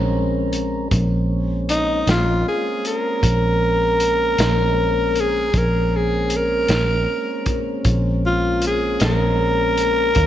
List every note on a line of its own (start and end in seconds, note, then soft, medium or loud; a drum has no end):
0.00 0.88 A#1 medium
0.00 0.88 G#3 medium
0.00 0.88 C4 medium
0.00 0.89 C#4 medium
0.00 0.88 A#4 medium
0.53 closed hi-hat medium
0.91 2.03 A#1 loud
0.91 5.50 G#3 medium
0.91 5.50 A#3 medium
0.91 5.50 C4 medium
0.91 5.50 C#4 medium
0.91 kick medium
0.91 closed hi-hat medium
1.69 2.07 D#4 medium
1.69 closed hi-hat medium
2.07 2.43 A#1 medium
2.07 2.46 F4 medium
2.07 snare medium
2.07 closed hi-hat medium
2.48 2.84 G#4 medium
2.85 5.22 A#4 medium
2.85 closed hi-hat medium
3.23 4.34 A#1 loud
3.23 kick medium
3.23 closed hi-hat medium
4.00 closed hi-hat medium
4.38 5.50 A#1 medium
4.38 snare loud
4.38 closed hi-hat medium
5.15 closed hi-hat medium
5.20 5.59 G#4 medium
5.54 6.65 A#1 medium
5.54 10.13 G#3 medium
5.54 10.13 A#3 medium
5.54 10.13 C4 medium
5.54 10.13 C#4 medium
5.54 kick medium
5.54 closed hi-hat medium
5.58 5.98 A#4 medium
5.96 6.38 G#4 medium
6.30 closed hi-hat medium
6.36 7.83 A#4 medium
6.68 7.05 A#1 medium
6.68 snare medium
6.68 closed hi-hat medium
7.46 kick medium
7.46 closed hi-hat medium
7.85 8.96 A#1 medium
7.85 kick medium
7.85 closed hi-hat medium
8.26 8.62 F4 medium
8.62 closed hi-hat medium
8.67 9.02 G#4 medium
9.00 10.12 A#1 medium
9.00 snare medium
9.00 closed hi-hat medium
9.04 10.27 A#4 medium
9.77 closed hi-hat medium
10.15 10.27 D#2 medium
10.15 10.27 F#3 medium
10.15 10.27 D#4 medium
10.15 10.27 C#5 medium
10.15 10.27 F5 medium
10.15 kick medium
10.15 closed hi-hat medium